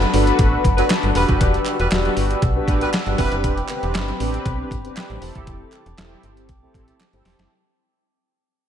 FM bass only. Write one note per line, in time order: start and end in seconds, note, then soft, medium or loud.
0.14 0.32 G1 loud
0.39 0.57 A1 loud
0.65 0.83 F#1 medium
1.03 1.12 G1 medium
1.15 1.25 E1 loud
1.29 1.37 F#1 loud
1.41 1.59 E1 loud
1.80 1.88 E1 loud
1.92 2.10 E1 loud
2.17 2.35 G1 medium
2.42 2.60 B1 loud
2.68 2.86 A1 medium
3.07 3.15 G1 medium
3.19 3.28 E1 loud
3.32 3.46 F#1 loud
3.44 3.62 E1 loud
3.83 3.96 E1 loud
3.95 4.13 G1 loud
4.20 4.38 A1 medium
4.46 4.64 B1 loud
4.71 4.89 G1 medium
5.10 5.18 A1 medium
5.22 5.31 E1 loud
5.35 5.44 F#1 medium
5.47 5.65 E1 loud
5.86 5.95 E1 medium
5.98 6.16 E1 loud
6.24 6.51 G1 medium
6.49 6.67 B1 loud
6.74 6.92 A1 medium
7.13 7.22 G1 medium
7.25 7.35 E1 loud
7.39 7.47 F#1 medium